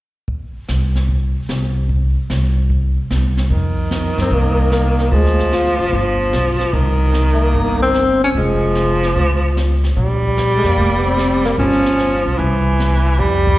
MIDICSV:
0, 0, Header, 1, 5, 480
1, 0, Start_track
1, 0, Key_signature, -4, "minor"
1, 0, Tempo, 403769
1, 332, Time_signature, 4, 2, 24, 8
1, 16151, End_track
2, 0, Start_track
2, 0, Title_t, "Tenor saxophone"
2, 0, Program_c, 0, 66
2, 5010, Note_on_c, 0, 60, 65
2, 5162, Note_on_c, 0, 58, 62
2, 5180, Note_off_c, 0, 60, 0
2, 5616, Note_off_c, 0, 58, 0
2, 5623, Note_on_c, 0, 58, 66
2, 6105, Note_on_c, 0, 56, 72
2, 6123, Note_off_c, 0, 58, 0
2, 6570, Note_off_c, 0, 56, 0
2, 6577, Note_on_c, 0, 65, 80
2, 7323, Note_off_c, 0, 65, 0
2, 8719, Note_on_c, 0, 57, 51
2, 8837, Note_on_c, 0, 58, 76
2, 8855, Note_off_c, 0, 57, 0
2, 9292, Note_off_c, 0, 58, 0
2, 9299, Note_on_c, 0, 60, 86
2, 9739, Note_off_c, 0, 60, 0
2, 9794, Note_on_c, 0, 61, 75
2, 9860, Note_off_c, 0, 61, 0
2, 9956, Note_on_c, 0, 56, 71
2, 10854, Note_off_c, 0, 56, 0
2, 12562, Note_on_c, 0, 56, 53
2, 12678, Note_on_c, 0, 58, 68
2, 12696, Note_off_c, 0, 56, 0
2, 13053, Note_on_c, 0, 59, 57
2, 13071, Note_off_c, 0, 58, 0
2, 13144, Note_on_c, 0, 60, 85
2, 13162, Note_off_c, 0, 59, 0
2, 13609, Note_off_c, 0, 60, 0
2, 13616, Note_on_c, 0, 58, 65
2, 13687, Note_off_c, 0, 58, 0
2, 13782, Note_on_c, 0, 61, 81
2, 14690, Note_off_c, 0, 61, 0
2, 16151, End_track
3, 0, Start_track
3, 0, Title_t, "Baritone saxophone"
3, 0, Program_c, 1, 67
3, 4162, Note_on_c, 1, 51, 67
3, 6036, Note_off_c, 1, 51, 0
3, 6078, Note_on_c, 1, 53, 77
3, 6994, Note_off_c, 1, 53, 0
3, 7047, Note_on_c, 1, 53, 81
3, 8002, Note_on_c, 1, 51, 82
3, 8020, Note_off_c, 1, 53, 0
3, 9654, Note_off_c, 1, 51, 0
3, 9931, Note_on_c, 1, 53, 81
3, 11641, Note_off_c, 1, 53, 0
3, 11846, Note_on_c, 1, 55, 85
3, 13722, Note_off_c, 1, 55, 0
3, 13770, Note_on_c, 1, 53, 76
3, 14718, Note_on_c, 1, 52, 79
3, 14736, Note_off_c, 1, 53, 0
3, 15682, Note_on_c, 1, 55, 88
3, 15699, Note_off_c, 1, 52, 0
3, 16151, Note_off_c, 1, 55, 0
3, 16151, End_track
4, 0, Start_track
4, 0, Title_t, "Upright bass"
4, 0, Program_c, 2, 32
4, 815, Note_on_c, 2, 36, 62
4, 1598, Note_off_c, 2, 36, 0
4, 1773, Note_on_c, 2, 36, 62
4, 2557, Note_off_c, 2, 36, 0
4, 2735, Note_on_c, 2, 36, 64
4, 3517, Note_off_c, 2, 36, 0
4, 3690, Note_on_c, 2, 36, 63
4, 4136, Note_off_c, 2, 36, 0
4, 4166, Note_on_c, 2, 41, 65
4, 4919, Note_off_c, 2, 41, 0
4, 4964, Note_on_c, 2, 42, 54
4, 5115, Note_off_c, 2, 42, 0
4, 5125, Note_on_c, 2, 36, 66
4, 6038, Note_off_c, 2, 36, 0
4, 6083, Note_on_c, 2, 38, 62
4, 6837, Note_off_c, 2, 38, 0
4, 6882, Note_on_c, 2, 30, 55
4, 7033, Note_off_c, 2, 30, 0
4, 7047, Note_on_c, 2, 31, 68
4, 7493, Note_off_c, 2, 31, 0
4, 7524, Note_on_c, 2, 35, 61
4, 7971, Note_off_c, 2, 35, 0
4, 8004, Note_on_c, 2, 36, 70
4, 8917, Note_off_c, 2, 36, 0
4, 8962, Note_on_c, 2, 31, 68
4, 9876, Note_off_c, 2, 31, 0
4, 9925, Note_on_c, 2, 29, 69
4, 10838, Note_off_c, 2, 29, 0
4, 10890, Note_on_c, 2, 37, 70
4, 11801, Note_off_c, 2, 37, 0
4, 11848, Note_on_c, 2, 34, 65
4, 12600, Note_off_c, 2, 34, 0
4, 12650, Note_on_c, 2, 41, 54
4, 12798, Note_off_c, 2, 41, 0
4, 12808, Note_on_c, 2, 29, 73
4, 13722, Note_off_c, 2, 29, 0
4, 13764, Note_on_c, 2, 31, 67
4, 14521, Note_off_c, 2, 31, 0
4, 14571, Note_on_c, 2, 35, 54
4, 14721, Note_off_c, 2, 35, 0
4, 14727, Note_on_c, 2, 36, 69
4, 15644, Note_off_c, 2, 36, 0
4, 15695, Note_on_c, 2, 41, 73
4, 16151, Note_off_c, 2, 41, 0
4, 16151, End_track
5, 0, Start_track
5, 0, Title_t, "Drums"
5, 329, Note_on_c, 9, 25, 39
5, 333, Note_on_c, 9, 36, 28
5, 452, Note_off_c, 9, 36, 0
5, 813, Note_on_c, 9, 38, 41
5, 815, Note_on_c, 9, 44, 44
5, 932, Note_off_c, 9, 38, 0
5, 934, Note_off_c, 9, 44, 0
5, 1136, Note_on_c, 9, 38, 27
5, 1255, Note_off_c, 9, 38, 0
5, 1293, Note_on_c, 9, 36, 25
5, 1295, Note_off_c, 9, 25, 0
5, 1295, Note_on_c, 9, 25, 42
5, 1412, Note_off_c, 9, 36, 0
5, 1771, Note_on_c, 9, 38, 45
5, 1772, Note_on_c, 9, 44, 49
5, 1890, Note_off_c, 9, 38, 0
5, 1891, Note_off_c, 9, 44, 0
5, 2250, Note_on_c, 9, 36, 27
5, 2252, Note_off_c, 9, 25, 0
5, 2252, Note_on_c, 9, 25, 40
5, 2369, Note_off_c, 9, 36, 0
5, 2731, Note_on_c, 9, 38, 40
5, 2732, Note_on_c, 9, 44, 44
5, 2850, Note_off_c, 9, 38, 0
5, 2851, Note_off_c, 9, 44, 0
5, 3209, Note_on_c, 9, 36, 26
5, 3212, Note_off_c, 9, 25, 0
5, 3212, Note_on_c, 9, 25, 35
5, 3328, Note_off_c, 9, 36, 0
5, 3693, Note_on_c, 9, 38, 45
5, 3694, Note_on_c, 9, 44, 49
5, 3812, Note_off_c, 9, 38, 0
5, 3813, Note_off_c, 9, 44, 0
5, 4009, Note_on_c, 9, 38, 31
5, 4128, Note_off_c, 9, 38, 0
5, 4165, Note_off_c, 9, 25, 0
5, 4165, Note_on_c, 9, 25, 41
5, 4167, Note_on_c, 9, 36, 30
5, 4285, Note_off_c, 9, 36, 0
5, 4647, Note_on_c, 9, 38, 44
5, 4648, Note_on_c, 9, 44, 50
5, 4766, Note_off_c, 9, 38, 0
5, 4767, Note_off_c, 9, 44, 0
5, 4968, Note_on_c, 9, 38, 32
5, 5087, Note_off_c, 9, 38, 0
5, 5128, Note_on_c, 9, 36, 28
5, 5129, Note_off_c, 9, 25, 0
5, 5129, Note_on_c, 9, 25, 42
5, 5247, Note_off_c, 9, 36, 0
5, 5605, Note_on_c, 9, 38, 45
5, 5606, Note_on_c, 9, 44, 44
5, 5724, Note_off_c, 9, 38, 0
5, 5725, Note_off_c, 9, 44, 0
5, 5928, Note_on_c, 9, 38, 31
5, 6047, Note_off_c, 9, 38, 0
5, 6086, Note_on_c, 9, 36, 29
5, 6089, Note_off_c, 9, 25, 0
5, 6089, Note_on_c, 9, 25, 34
5, 6205, Note_off_c, 9, 36, 0
5, 6248, Note_on_c, 9, 38, 21
5, 6367, Note_off_c, 9, 38, 0
5, 6408, Note_on_c, 9, 38, 29
5, 6527, Note_off_c, 9, 38, 0
5, 6566, Note_on_c, 9, 38, 48
5, 6567, Note_on_c, 9, 44, 52
5, 6685, Note_off_c, 9, 38, 0
5, 6686, Note_off_c, 9, 44, 0
5, 7046, Note_on_c, 9, 36, 26
5, 7048, Note_off_c, 9, 25, 0
5, 7048, Note_on_c, 9, 25, 37
5, 7165, Note_off_c, 9, 36, 0
5, 7524, Note_on_c, 9, 38, 51
5, 7525, Note_on_c, 9, 44, 45
5, 7643, Note_off_c, 9, 38, 0
5, 7644, Note_off_c, 9, 44, 0
5, 7841, Note_on_c, 9, 38, 32
5, 7960, Note_off_c, 9, 38, 0
5, 8004, Note_off_c, 9, 25, 0
5, 8004, Note_on_c, 9, 25, 38
5, 8004, Note_on_c, 9, 36, 28
5, 8123, Note_off_c, 9, 36, 0
5, 8484, Note_on_c, 9, 38, 47
5, 8485, Note_on_c, 9, 44, 55
5, 8603, Note_off_c, 9, 38, 0
5, 8604, Note_off_c, 9, 44, 0
5, 8964, Note_off_c, 9, 25, 0
5, 8964, Note_on_c, 9, 25, 43
5, 8964, Note_on_c, 9, 36, 27
5, 9083, Note_off_c, 9, 36, 0
5, 9441, Note_on_c, 9, 38, 47
5, 9442, Note_on_c, 9, 44, 51
5, 9559, Note_off_c, 9, 38, 0
5, 9561, Note_off_c, 9, 44, 0
5, 9923, Note_off_c, 9, 25, 0
5, 9923, Note_on_c, 9, 25, 41
5, 9925, Note_on_c, 9, 36, 27
5, 10044, Note_off_c, 9, 36, 0
5, 10402, Note_on_c, 9, 38, 47
5, 10403, Note_on_c, 9, 44, 38
5, 10521, Note_off_c, 9, 38, 0
5, 10522, Note_off_c, 9, 44, 0
5, 10731, Note_on_c, 9, 38, 32
5, 10850, Note_off_c, 9, 38, 0
5, 10891, Note_on_c, 9, 36, 26
5, 10892, Note_off_c, 9, 25, 0
5, 10892, Note_on_c, 9, 25, 39
5, 11009, Note_off_c, 9, 36, 0
5, 11379, Note_on_c, 9, 38, 45
5, 11380, Note_on_c, 9, 44, 49
5, 11497, Note_off_c, 9, 38, 0
5, 11499, Note_off_c, 9, 44, 0
5, 11693, Note_on_c, 9, 38, 33
5, 11812, Note_off_c, 9, 38, 0
5, 11850, Note_on_c, 9, 36, 28
5, 11852, Note_off_c, 9, 25, 0
5, 11852, Note_on_c, 9, 25, 37
5, 11969, Note_off_c, 9, 36, 0
5, 12332, Note_on_c, 9, 38, 45
5, 12333, Note_on_c, 9, 44, 49
5, 12451, Note_off_c, 9, 38, 0
5, 12452, Note_off_c, 9, 44, 0
5, 12648, Note_on_c, 9, 38, 33
5, 12767, Note_off_c, 9, 38, 0
5, 12809, Note_off_c, 9, 25, 0
5, 12809, Note_on_c, 9, 25, 39
5, 12810, Note_on_c, 9, 36, 28
5, 12929, Note_off_c, 9, 36, 0
5, 13291, Note_on_c, 9, 38, 46
5, 13292, Note_on_c, 9, 44, 47
5, 13410, Note_off_c, 9, 38, 0
5, 13411, Note_off_c, 9, 44, 0
5, 13612, Note_on_c, 9, 38, 34
5, 13731, Note_off_c, 9, 38, 0
5, 13770, Note_on_c, 9, 36, 29
5, 13772, Note_off_c, 9, 25, 0
5, 13772, Note_on_c, 9, 25, 36
5, 13889, Note_off_c, 9, 36, 0
5, 13932, Note_on_c, 9, 38, 21
5, 14051, Note_off_c, 9, 38, 0
5, 14090, Note_on_c, 9, 38, 30
5, 14209, Note_off_c, 9, 38, 0
5, 14251, Note_on_c, 9, 38, 46
5, 14253, Note_on_c, 9, 44, 41
5, 14370, Note_off_c, 9, 38, 0
5, 14372, Note_off_c, 9, 44, 0
5, 14732, Note_off_c, 9, 25, 0
5, 14732, Note_on_c, 9, 25, 38
5, 14732, Note_on_c, 9, 36, 27
5, 14851, Note_off_c, 9, 36, 0
5, 15214, Note_on_c, 9, 38, 50
5, 15215, Note_on_c, 9, 44, 50
5, 15333, Note_off_c, 9, 38, 0
5, 15334, Note_off_c, 9, 44, 0
5, 15695, Note_off_c, 9, 25, 0
5, 15695, Note_on_c, 9, 25, 38
5, 15695, Note_on_c, 9, 36, 28
5, 15814, Note_off_c, 9, 36, 0
5, 16016, Note_on_c, 9, 36, 42
5, 16135, Note_off_c, 9, 36, 0
5, 16151, Note_off_c, 9, 25, 0
5, 16151, End_track
0, 0, End_of_file